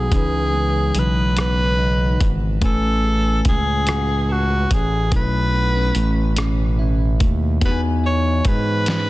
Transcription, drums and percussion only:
0.12 kick, closed hi-hat
0.95 closed hi-hat
1.37 cross-stick, closed hi-hat
2.20 kick, closed hi-hat
2.62 kick, closed hi-hat
3.45 kick, closed hi-hat
3.87 cross-stick, closed hi-hat
4.71 kick, closed hi-hat
5.12 kick, closed hi-hat
5.95 closed hi-hat
6.36 cross-stick, closed hi-hat
7.20 kick, closed hi-hat
7.61 kick, closed hi-hat
8.45 kick, closed hi-hat
8.86 snare, closed hi-hat

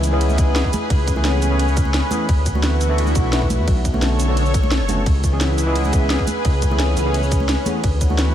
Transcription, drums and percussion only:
0.04 open hi-hat, shaker
0.21 closed hi-hat, ride
0.30 high conga, shaker
0.38 kick, closed hi-hat, shaker
0.56 snare, closed hi-hat, ride
0.64 kick
0.73 open hi-hat, high conga, shaker
0.90 kick, closed hi-hat, ride
1.08 kick, closed hi-hat, shaker
1.16 high conga
1.25 snare, closed hi-hat, ride
1.42 open hi-hat, shaker
1.59 closed hi-hat, ride
1.68 shaker
1.77 kick, closed hi-hat, shaker
1.85 high conga
1.94 snare, closed hi-hat, ride
2.11 open hi-hat, high conga, shaker
2.29 kick, closed hi-hat, ride
2.46 kick, closed hi-hat, shaker
2.55 high conga
2.63 snare, closed hi-hat, ride
2.81 open hi-hat, shaker
2.98 closed hi-hat, ride
3.07 high conga, shaker
3.15 kick, closed hi-hat, shaker
3.33 snare, closed hi-hat, ride
3.42 kick
3.50 open hi-hat, high conga, shaker
3.68 kick, closed hi-hat, ride
3.85 kick, closed hi-hat, shaker
3.94 high conga
4.02 snare, closed hi-hat, ride
4.20 open hi-hat, shaker
4.37 closed hi-hat, ride
4.46 shaker
4.54 kick, closed hi-hat, shaker
4.63 high conga
4.71 snare, closed hi-hat, ride
4.89 open hi-hat, high conga, shaker
5.06 kick, closed hi-hat, ride
5.24 kick, closed hi-hat, shaker
5.41 snare, closed hi-hat, ride
5.58 open hi-hat, shaker
5.76 closed hi-hat, ride
5.84 high conga, shaker
5.93 kick, closed hi-hat, shaker
6.10 snare, closed hi-hat, ride
6.19 kick
6.27 open hi-hat, high conga, shaker
6.45 kick, closed hi-hat, ride
6.62 kick, closed hi-hat, shaker
6.71 high conga
6.80 snare, closed hi-hat, ride
6.97 open hi-hat, shaker
7.14 closed hi-hat, ride
7.23 shaker
7.32 kick, closed hi-hat, shaker
7.40 high conga
7.49 snare, closed hi-hat, ride
7.66 open hi-hat, high conga, shaker
7.84 kick, closed hi-hat, ride
8.01 kick, closed hi-hat, shaker
8.10 high conga
8.18 snare, closed hi-hat, ride

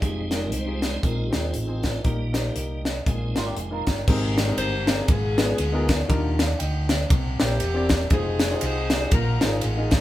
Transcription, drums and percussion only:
0.02 kick, closed hi-hat
0.31 snare, closed hi-hat
0.52 closed hi-hat
0.82 snare, closed hi-hat
1.03 kick, closed hi-hat
1.33 snare, closed hi-hat
1.54 closed hi-hat
1.83 kick, snare, closed hi-hat
2.04 kick, closed hi-hat
2.34 snare, closed hi-hat
2.56 closed hi-hat
2.85 snare, closed hi-hat
3.06 kick, closed hi-hat
3.36 snare, closed hi-hat
3.57 closed hi-hat
3.87 kick, snare, closed hi-hat
4.07 kick, crash
4.38 snare, ride bell
4.58 ride bell
4.87 snare, ride bell
5.08 kick, ride bell
5.38 snare, ride bell
5.58 ride bell
5.89 kick, snare, ride bell
6.10 kick, ride bell
6.39 snare, ride bell
6.60 ride bell
6.89 snare, ride bell
7.10 kick, ride bell
7.40 snare, ride bell
7.60 ride bell
7.89 kick, snare, ride bell
8.10 kick, ride bell
8.39 snare, ride bell
8.61 ride bell
8.90 snare, ride bell
9.11 kick, ride bell
9.41 snare, ride bell
9.61 ride bell
9.91 kick, snare, ride bell

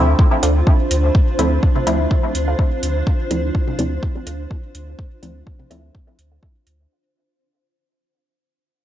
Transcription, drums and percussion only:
0.19 kick
0.43 closed hi-hat
0.67 kick
0.91 closed hi-hat
1.15 kick
1.39 closed hi-hat, low woodblock
1.63 kick
1.76 mid tom
1.87 closed hi-hat, low woodblock
2.11 kick
2.35 closed hi-hat
2.59 kick
2.83 closed hi-hat
3.07 kick
3.31 closed hi-hat, low woodblock
3.55 kick
3.68 mid tom
3.79 closed hi-hat, mid tom, low woodblock
4.03 kick
4.27 closed hi-hat
4.51 kick
4.75 closed hi-hat
4.99 kick
5.23 closed hi-hat, low woodblock
5.47 kick
5.60 mid tom
5.71 closed hi-hat, low woodblock
5.95 kick
6.19 closed hi-hat
6.43 kick
6.67 closed hi-hat

